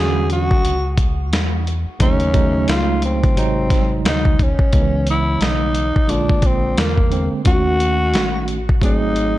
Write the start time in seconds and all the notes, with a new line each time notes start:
Already playing: E2 D3 F#3 C#4 F#4 G#4
0.30 F#4, closed hi-hat
0.51 kick
0.64 C#2, closed hi-hat
0.98 kick, closed hi-hat
1.32 E2, snare, closed hi-hat
1.67 closed hi-hat
1.87 muted fingered electric bass stroke
1.99 D#2 C#3 F#3 A3 C#4 D#4, kick, closed hi-hat
2.20 closed hi-hat
2.33 C#3 F#3 A3 D#4, kick, closed hi-hat
2.68 C#2 F4, snare, closed hi-hat
3.02 C4, closed hi-hat
3.23 kick, closed hi-hat
3.36 G#1 C3 F#3 G#3 D#4, closed hi-hat
3.70 kick, snare, closed hi-hat
4.04 D2, snare, closed hi-hat
4.09 D#4
4.25 kick
4.39 C#4, kick, closed hi-hat
4.59 kick
4.72 C#2 C#3 G#3 B3 D#4, kick, closed hi-hat
4.81 E3
5.07 E4, closed hi-hat
5.40 B1 D#4, snare, closed hi-hat
5.75 closed hi-hat
5.96 kick
6.07 A#1 D3 G#3 A#3 D4 F4, closed hi-hat
6.29 kick
6.42 C4, kick, closed hi-hat
6.77 E2 A#3, snare, closed hi-hat
6.97 kick
7.10 D3 G#3 A#3 C4, closed hi-hat
7.33 muted fingered electric bass stroke
7.44 D#2 D#3 A3 C#4 F4 F#4, kick, closed hi-hat
7.53 F#4
7.80 closed hi-hat
8.14 A1, snare, closed hi-hat
8.48 closed hi-hat
8.69 kick
8.81 G#1 F#3 A3 C4 D#4 G#4, kick, closed hi-hat
9.16 closed hi-hat